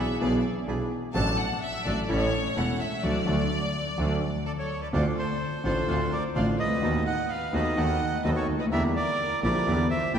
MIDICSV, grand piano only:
0, 0, Header, 1, 2, 480
1, 0, Start_track
1, 0, Tempo, 473186
1, 1167, Time_signature, 4, 2, 24, 8
1, 10335, End_track
2, 0, Start_track
2, 0, Title_t, "Grand piano"
2, 0, Program_c, 0, 0
2, 0, Note_on_c, 0, 35, 48
2, 0, Note_on_c, 0, 47, 55
2, 0, Note_on_c, 0, 52, 43
2, 0, Note_on_c, 0, 59, 36
2, 0, Note_on_c, 0, 62, 37
2, 0, Note_on_c, 0, 68, 47
2, 169, Note_off_c, 0, 52, 0
2, 169, Note_off_c, 0, 59, 0
2, 171, Note_off_c, 0, 35, 0
2, 172, Note_off_c, 0, 47, 0
2, 172, Note_off_c, 0, 62, 0
2, 174, Note_off_c, 0, 68, 0
2, 210, Note_on_c, 0, 52, 70
2, 211, Note_on_c, 0, 59, 52
2, 212, Note_on_c, 0, 35, 74
2, 217, Note_on_c, 0, 47, 74
2, 217, Note_on_c, 0, 68, 75
2, 219, Note_on_c, 0, 62, 60
2, 412, Note_off_c, 0, 35, 0
2, 412, Note_off_c, 0, 52, 0
2, 412, Note_off_c, 0, 59, 0
2, 415, Note_off_c, 0, 47, 0
2, 415, Note_off_c, 0, 68, 0
2, 416, Note_off_c, 0, 62, 0
2, 681, Note_on_c, 0, 52, 43
2, 682, Note_on_c, 0, 59, 38
2, 682, Note_on_c, 0, 62, 38
2, 683, Note_on_c, 0, 35, 51
2, 683, Note_on_c, 0, 47, 51
2, 687, Note_on_c, 0, 68, 49
2, 885, Note_off_c, 0, 52, 0
2, 886, Note_off_c, 0, 47, 0
2, 886, Note_off_c, 0, 59, 0
2, 886, Note_off_c, 0, 62, 0
2, 887, Note_off_c, 0, 35, 0
2, 888, Note_off_c, 0, 68, 0
2, 1157, Note_on_c, 0, 33, 81
2, 1158, Note_on_c, 0, 45, 75
2, 1158, Note_on_c, 0, 54, 66
2, 1158, Note_on_c, 0, 57, 65
2, 1160, Note_on_c, 0, 62, 62
2, 1162, Note_on_c, 0, 69, 72
2, 1362, Note_off_c, 0, 33, 0
2, 1363, Note_off_c, 0, 45, 0
2, 1363, Note_off_c, 0, 54, 0
2, 1363, Note_off_c, 0, 57, 0
2, 1364, Note_off_c, 0, 62, 0
2, 1365, Note_off_c, 0, 69, 0
2, 1881, Note_on_c, 0, 45, 50
2, 1882, Note_on_c, 0, 54, 46
2, 1882, Note_on_c, 0, 57, 41
2, 1883, Note_on_c, 0, 33, 53
2, 1885, Note_on_c, 0, 62, 42
2, 1885, Note_on_c, 0, 69, 47
2, 2084, Note_off_c, 0, 33, 0
2, 2084, Note_off_c, 0, 45, 0
2, 2084, Note_off_c, 0, 54, 0
2, 2084, Note_off_c, 0, 57, 0
2, 2085, Note_off_c, 0, 62, 0
2, 2085, Note_off_c, 0, 69, 0
2, 2112, Note_on_c, 0, 52, 66
2, 2117, Note_on_c, 0, 33, 79
2, 2118, Note_on_c, 0, 57, 61
2, 2120, Note_on_c, 0, 45, 71
2, 2121, Note_on_c, 0, 61, 62
2, 2124, Note_on_c, 0, 69, 75
2, 2319, Note_off_c, 0, 52, 0
2, 2321, Note_off_c, 0, 33, 0
2, 2321, Note_off_c, 0, 57, 0
2, 2323, Note_off_c, 0, 45, 0
2, 2323, Note_off_c, 0, 61, 0
2, 2325, Note_off_c, 0, 69, 0
2, 2596, Note_on_c, 0, 57, 43
2, 2597, Note_on_c, 0, 52, 45
2, 2598, Note_on_c, 0, 28, 51
2, 2600, Note_on_c, 0, 69, 47
2, 2601, Note_on_c, 0, 40, 53
2, 2602, Note_on_c, 0, 61, 43
2, 2800, Note_off_c, 0, 57, 0
2, 2801, Note_off_c, 0, 28, 0
2, 2801, Note_off_c, 0, 52, 0
2, 2802, Note_off_c, 0, 69, 0
2, 2803, Note_off_c, 0, 40, 0
2, 2803, Note_off_c, 0, 61, 0
2, 3072, Note_on_c, 0, 54, 82
2, 3074, Note_on_c, 0, 57, 80
2, 3076, Note_on_c, 0, 50, 73
2, 3228, Note_off_c, 0, 54, 0
2, 3230, Note_off_c, 0, 57, 0
2, 3231, Note_off_c, 0, 50, 0
2, 3307, Note_on_c, 0, 57, 85
2, 3309, Note_on_c, 0, 54, 80
2, 3311, Note_on_c, 0, 50, 81
2, 3465, Note_off_c, 0, 57, 0
2, 3467, Note_off_c, 0, 50, 0
2, 3467, Note_off_c, 0, 54, 0
2, 4033, Note_on_c, 0, 54, 72
2, 4035, Note_on_c, 0, 50, 74
2, 4035, Note_on_c, 0, 57, 80
2, 4190, Note_off_c, 0, 54, 0
2, 4191, Note_off_c, 0, 50, 0
2, 4191, Note_off_c, 0, 57, 0
2, 4999, Note_on_c, 0, 50, 61
2, 5000, Note_on_c, 0, 38, 74
2, 5000, Note_on_c, 0, 57, 56
2, 5002, Note_on_c, 0, 60, 50
2, 5002, Note_on_c, 0, 65, 61
2, 5205, Note_off_c, 0, 38, 0
2, 5205, Note_off_c, 0, 50, 0
2, 5205, Note_off_c, 0, 57, 0
2, 5206, Note_off_c, 0, 60, 0
2, 5206, Note_off_c, 0, 65, 0
2, 5718, Note_on_c, 0, 50, 62
2, 5722, Note_on_c, 0, 33, 64
2, 5723, Note_on_c, 0, 57, 54
2, 5724, Note_on_c, 0, 45, 71
2, 5724, Note_on_c, 0, 60, 56
2, 5729, Note_on_c, 0, 65, 65
2, 5926, Note_off_c, 0, 50, 0
2, 5928, Note_off_c, 0, 33, 0
2, 5929, Note_off_c, 0, 45, 0
2, 5929, Note_off_c, 0, 57, 0
2, 5929, Note_off_c, 0, 60, 0
2, 5931, Note_off_c, 0, 65, 0
2, 5964, Note_on_c, 0, 50, 76
2, 5965, Note_on_c, 0, 57, 53
2, 5966, Note_on_c, 0, 38, 66
2, 5967, Note_on_c, 0, 60, 55
2, 5971, Note_on_c, 0, 65, 70
2, 6169, Note_off_c, 0, 50, 0
2, 6169, Note_off_c, 0, 57, 0
2, 6170, Note_off_c, 0, 38, 0
2, 6170, Note_off_c, 0, 60, 0
2, 6172, Note_off_c, 0, 65, 0
2, 6443, Note_on_c, 0, 57, 58
2, 6445, Note_on_c, 0, 50, 62
2, 6448, Note_on_c, 0, 33, 71
2, 6448, Note_on_c, 0, 45, 70
2, 6448, Note_on_c, 0, 60, 58
2, 6449, Note_on_c, 0, 65, 70
2, 6648, Note_off_c, 0, 57, 0
2, 6650, Note_off_c, 0, 50, 0
2, 6651, Note_off_c, 0, 33, 0
2, 6651, Note_off_c, 0, 45, 0
2, 6651, Note_off_c, 0, 60, 0
2, 6652, Note_off_c, 0, 65, 0
2, 6736, Note_on_c, 0, 36, 42
2, 6802, Note_on_c, 0, 37, 47
2, 6803, Note_off_c, 0, 36, 0
2, 6859, Note_on_c, 0, 38, 66
2, 6867, Note_off_c, 0, 37, 0
2, 6916, Note_on_c, 0, 39, 78
2, 6919, Note_on_c, 0, 51, 66
2, 6921, Note_on_c, 0, 59, 53
2, 6922, Note_on_c, 0, 57, 54
2, 6923, Note_on_c, 0, 66, 69
2, 6925, Note_off_c, 0, 38, 0
2, 7125, Note_off_c, 0, 39, 0
2, 7127, Note_off_c, 0, 51, 0
2, 7128, Note_off_c, 0, 59, 0
2, 7129, Note_off_c, 0, 57, 0
2, 7129, Note_off_c, 0, 66, 0
2, 7637, Note_on_c, 0, 51, 70
2, 7638, Note_on_c, 0, 59, 56
2, 7639, Note_on_c, 0, 39, 69
2, 7639, Note_on_c, 0, 57, 57
2, 7645, Note_on_c, 0, 66, 70
2, 7846, Note_off_c, 0, 59, 0
2, 7847, Note_off_c, 0, 39, 0
2, 7847, Note_off_c, 0, 51, 0
2, 7847, Note_off_c, 0, 57, 0
2, 7850, Note_off_c, 0, 66, 0
2, 7873, Note_on_c, 0, 57, 56
2, 7875, Note_on_c, 0, 39, 77
2, 7876, Note_on_c, 0, 51, 72
2, 7876, Note_on_c, 0, 66, 67
2, 7879, Note_on_c, 0, 59, 54
2, 8084, Note_off_c, 0, 57, 0
2, 8085, Note_off_c, 0, 39, 0
2, 8086, Note_off_c, 0, 51, 0
2, 8086, Note_off_c, 0, 66, 0
2, 8087, Note_off_c, 0, 59, 0
2, 8358, Note_on_c, 0, 51, 69
2, 8360, Note_on_c, 0, 39, 80
2, 8361, Note_on_c, 0, 57, 58
2, 8362, Note_on_c, 0, 59, 58
2, 8365, Note_on_c, 0, 66, 68
2, 8568, Note_off_c, 0, 39, 0
2, 8568, Note_off_c, 0, 57, 0
2, 8569, Note_off_c, 0, 59, 0
2, 8570, Note_off_c, 0, 51, 0
2, 8571, Note_off_c, 0, 66, 0
2, 8669, Note_on_c, 0, 37, 47
2, 8730, Note_off_c, 0, 37, 0
2, 8730, Note_on_c, 0, 38, 56
2, 8791, Note_off_c, 0, 38, 0
2, 8791, Note_on_c, 0, 39, 69
2, 8841, Note_on_c, 0, 55, 63
2, 8842, Note_on_c, 0, 50, 64
2, 8842, Note_on_c, 0, 58, 55
2, 8843, Note_on_c, 0, 52, 71
2, 8844, Note_on_c, 0, 40, 75
2, 8844, Note_on_c, 0, 64, 73
2, 8851, Note_off_c, 0, 39, 0
2, 9048, Note_off_c, 0, 50, 0
2, 9048, Note_off_c, 0, 52, 0
2, 9048, Note_off_c, 0, 55, 0
2, 9048, Note_off_c, 0, 58, 0
2, 9049, Note_off_c, 0, 40, 0
2, 9049, Note_off_c, 0, 64, 0
2, 9554, Note_on_c, 0, 50, 65
2, 9558, Note_on_c, 0, 34, 72
2, 9558, Note_on_c, 0, 55, 56
2, 9559, Note_on_c, 0, 46, 66
2, 9560, Note_on_c, 0, 58, 56
2, 9562, Note_on_c, 0, 64, 65
2, 9763, Note_off_c, 0, 50, 0
2, 9765, Note_off_c, 0, 34, 0
2, 9765, Note_off_c, 0, 55, 0
2, 9766, Note_off_c, 0, 46, 0
2, 9766, Note_off_c, 0, 58, 0
2, 9767, Note_off_c, 0, 64, 0
2, 9801, Note_on_c, 0, 50, 63
2, 9803, Note_on_c, 0, 40, 71
2, 9803, Note_on_c, 0, 52, 72
2, 9804, Note_on_c, 0, 55, 58
2, 9806, Note_on_c, 0, 58, 57
2, 9807, Note_on_c, 0, 64, 65
2, 10006, Note_off_c, 0, 50, 0
2, 10007, Note_off_c, 0, 40, 0
2, 10007, Note_off_c, 0, 52, 0
2, 10008, Note_off_c, 0, 55, 0
2, 10009, Note_off_c, 0, 58, 0
2, 10009, Note_off_c, 0, 64, 0
2, 10278, Note_on_c, 0, 50, 69
2, 10284, Note_on_c, 0, 46, 72
2, 10284, Note_on_c, 0, 55, 59
2, 10285, Note_on_c, 0, 34, 78
2, 10285, Note_on_c, 0, 64, 69
2, 10286, Note_on_c, 0, 58, 55
2, 10335, Note_off_c, 0, 34, 0
2, 10335, Note_off_c, 0, 46, 0
2, 10335, Note_off_c, 0, 50, 0
2, 10335, Note_off_c, 0, 55, 0
2, 10335, Note_off_c, 0, 58, 0
2, 10335, Note_off_c, 0, 64, 0
2, 10335, End_track
0, 0, End_of_file